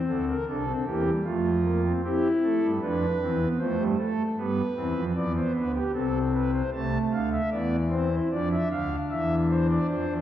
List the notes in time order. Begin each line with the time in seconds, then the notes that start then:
Already playing: C4
0.08 D2 D3 A4
0.28 A#4
0.48 C2 C3 D4 A4
0.68 C4
0.86 E2 E3 A#3 G4
1.05 G3
1.24 F2 F3 A3 F4
1.64 A#3
1.84 C4
2.04 C4 E4 G4
2.43 A3 A4
2.63 G2 G3
2.81 F2 F3 D4 B4
3.21 E2 E3 C4
3.41 B3
3.59 F2 F3 A3 C5
3.78 G2 G3
3.98 A3 A4
4.37 G2 G3 B3 B4
4.76 E2 E3 C4
4.96 F2 F3
5.16 E2 E3 B3 D5
5.36 C5
5.54 D2 D3 B4
5.75 G4
5.94 C2 C3 C4 A4
6.34 B4
6.53 C5
6.73 C2 C3 A3 A5
7.13 D2 D3 F5
7.32 E5
7.51 E2 E3 B3 D5
7.90 C4 C5
8.11 E4
8.31 F2 F3 D4 D5
8.51 E5
8.71 D2 D3 F5
9.10 E2 E3 E5
9.50 C5
9.70 D5
9.89 F2 F3 C5
10.09 E2 E3